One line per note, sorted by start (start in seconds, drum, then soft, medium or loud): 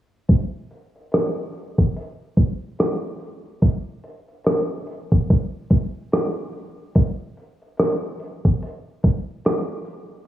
0.29 kick loud
0.29 closed hi-hat medium
0.71 closed hi-hat medium
0.96 closed hi-hat soft
1.12 cross-stick loud
1.12 closed hi-hat medium
1.53 closed hi-hat medium
1.78 kick medium
1.96 closed hi-hat medium
2.37 kick medium
2.37 closed hi-hat medium
2.79 cross-stick loud
2.79 closed hi-hat medium
3.19 closed hi-hat medium
3.62 kick loud
3.62 closed hi-hat medium
4.04 closed hi-hat medium
4.28 closed hi-hat soft
4.44 cross-stick loud
4.44 closed hi-hat medium
4.87 closed hi-hat medium
5.12 kick medium
5.30 kick medium
5.30 closed hi-hat medium
5.70 kick medium
5.70 closed hi-hat medium
6.12 cross-stick loud
6.12 closed hi-hat medium
6.52 closed hi-hat medium
6.95 kick loud
6.95 closed hi-hat medium
7.37 closed hi-hat medium
7.62 closed hi-hat soft
7.77 cross-stick loud
7.77 closed hi-hat medium
8.20 closed hi-hat medium
8.45 kick medium
8.63 closed hi-hat medium
9.03 kick medium
9.03 closed hi-hat medium
9.45 cross-stick loud
9.45 closed hi-hat medium
9.85 closed hi-hat medium